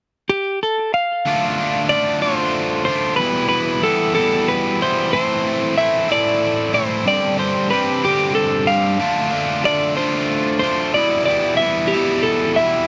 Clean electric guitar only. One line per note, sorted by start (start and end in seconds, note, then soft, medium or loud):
0.29 0.59 G4 medium
0.63 0.93 A4 medium
0.94 1.89 F5 medium
1.89 2.19 D5 medium
2.22 2.84 C5 medium
2.85 3.16 C5 medium
3.16 3.47 B4 medium
3.49 3.83 B4 medium
3.83 4.13 A4 medium
4.15 4.49 A4 medium
4.48 4.82 B4 medium
4.82 5.12 C5 medium
5.13 5.77 C5 medium
5.78 6.11 E5 medium
6.12 6.74 D5 medium
6.74 7.05 C5 medium
7.08 7.39 D5 medium
7.39 7.70 C5 medium
7.70 8.05 B4 medium
8.05 8.34 G4 medium
8.35 8.69 A4 medium
8.67 9.65 F5 medium
9.65 9.96 D5 medium
9.97 10.58 C5 medium
10.59 10.94 C5 medium
10.94 11.24 D5 medium
11.26 11.57 D5 medium
11.57 11.93 E5 medium
11.88 12.24 G4 medium
12.23 12.58 A4 medium
12.56 12.87 E5 medium